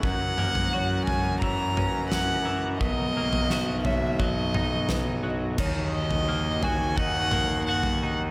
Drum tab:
CC |----------------|----------------|x---------------|
SD |------------o---|----o-------o---|----------------|
T2 |--o-----o-o-----|----------o-----|----------o-----|
FT |o--o--o---o-o---|o--o--o---o-o---|o--o--o---o--o--|
BD |o-------o-------|o-------o-------|o-------o-------|